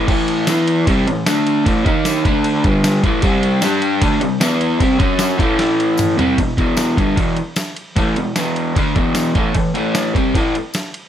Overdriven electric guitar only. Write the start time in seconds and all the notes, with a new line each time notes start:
0.08 A2 E3 A3
0.48 E3 B3 E4
0.87 C3 G3 C4
1.08 A2 E3
1.27 D3 A3 D4
1.66 A2 E3 A3
1.85 D#3 A#3 D#4
2.25 D3 A3 D4
2.64 G2 D3 G3
3.03 A2 E3 A3
3.23 C3 G3 C4
3.63 G3 D4 G4
4.02 D3 A3 D4
4.21 C3 G3
4.40 E3 B3 E4
4.80 C3 G3 C4
4.99 F#3 C#4 F#4
5.38 A2 E3 A3
6.18 C3 G3 C4
6.39 E2 B2
6.57 E2 B2 E3
6.97 G2 D3 G3
7.16 E2 B2 E3
7.96 A2 E3 A3
8.17 E2 B2
8.36 E2 B2 E3
8.75 D3 A3 D4
8.96 E2 B2 E3
9.35 A2 E3 A3
9.55 A2 E3
9.74 A2 E3 A3
10.14 C3 G3 C4
10.35 A2 E3 A3